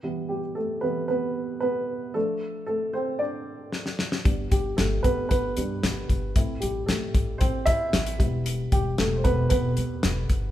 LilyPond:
<<
  \new Staff \with { instrumentName = "Upright piano" } { \time 4/4 \key e \phrygian \tempo 4 = 114 r8 g'8 a'8 b'8 b'4 b'4 | a'4 a'8 c''8 d''4. r8 | r8 g'8 a'8 b'8 b'4. r8 | r8 g'8 a'4 c''8 e''4 r8 |
r8 g'8 a'16. c''32 b'8 b'4. r8 | }
  \new Staff \with { instrumentName = "Upright piano" } { \time 4/4 \key e \phrygian << { <e g b>8 r4 <e g b>8 r2 | <f a d'>1 | <g b d'>4. r4 <g b d'>8 r4 | <a c' e'>8 r2. <g b e'>8~ |
<g b e'>4 r2. | } \\ { r8 g8 a8 r8 b4 b4 | r4 a8 c'8 d'4. r8 | r8 g8 a8 b8 b4. r8 | r8 g8 a4 c'8 e'4 r8 |
r8 g8 a8 b8 b4. r8 | } >> }
  \new Staff \with { instrumentName = "Upright bass" } { \clef bass \time 4/4 \key e \phrygian r1 | r1 | g,,8 g,,8 g,,8 g,,8 g,,8 g,8 g,,8 g,,8 | a,,8 a,,8 a,,8 a,,8 a,,8 a,8 a,,8 e,,8~ |
e,,8 e,,8 e,,8 e,,8 e,,8 e,8 e,,8 g,,8 | }
  \new DrumStaff \with { instrumentName = "Drums" } \drummode { \time 4/4 r4 r4 r4 r4 | r4 r4 r4 sn16 sn16 sn16 sn16 | <hh bd>8 <hh bd>8 <hh sn>8 <hh bd>8 <hh bd>8 hh8 <hh sn>8 <hh bd>8 | <hh bd>8 hh8 <hh sn>8 <hh bd>8 <hh bd>8 <hh bd>8 <hh sn>16 hh16 <hh bd>8 |
hh8 <hh bd>8 <hh sn>8 <hh bd>8 <hh bd>8 hh8 <hh sn>8 <hh bd>8 | }
>>